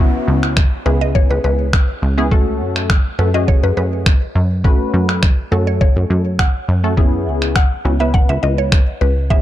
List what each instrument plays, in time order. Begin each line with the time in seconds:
Already playing: downlifter
0.00 analog polysynth B3 C#4 E4 F#4
0.28 analog synth bass C#2
0.43 finger snap
0.57 finger snap, kick
0.86 analog synth bass C#2, analog polysynth B3 C#4 E4 G#4, synth pluck B4
1.01 synth pluck D#5
1.15 synth pluck C#5, kick
1.30 analog synth bass C#2, synth pluck B4
1.44 analog synth bass C#2, synth pluck B4
1.73 finger snap, kick
2.02 analog synth bass C#2
2.17 analog polysynth B3 C#4 E4 G#4
2.31 analog polysynth A3 C#4 F#4 A4, kick
2.61 analog synth bass F#2
2.76 finger snap
2.90 finger snap, kick
3.19 analog synth bass F#2, analog polysynth A3 C#4 F#4 A4, synth pluck B4
3.34 analog polysynth A3 C#4 F#4 G#4, synth pluck D#5
3.48 synth pluck C#5, kick
3.63 analog synth bass F#2, synth pluck B4
3.77 analog synth bass F#2, synth pluck B4
4.06 finger snap, kick
4.35 analog synth bass F#2
4.64 analog polysynth A3 C#4 F#4 B4, kick
4.94 analog synth bass F#2
5.09 finger snap
5.23 finger snap, kick
5.51 analog synth bass F#2, analog polysynth A3 C#4 F#4 A4, synth pluck A4
5.67 synth pluck C#5
5.81 synth pluck C#5, kick
5.96 analog synth bass F#2
6.10 analog synth bass F#2
6.39 synth pluck F#5, finger snap, kick
6.68 analog synth bass F#2
6.84 analog polysynth A3 C#4 F#4 A4
6.97 analog polysynth B3 C#4 E4 G#4, kick
7.27 analog synth bass C#2
7.42 finger snap
7.56 synth pluck F#5, finger snap, kick
7.85 analog synth bass C#2, analog polysynth B3 C#4 E4 F#4
8.00 analog polysynth B3 C#4 E4 B4, synth pluck E5
8.14 synth pluck F#5, kick
8.29 analog synth bass C#2, synth pluck E5
8.43 analog synth bass C#2, synth pluck D#5
8.58 synth pluck C#5
8.72 finger snap, kick
9.01 analog synth bass C#2, synth pluck B4
9.30 analog polysynth B3 C#4 E4 G#4, synth pluck E5, kick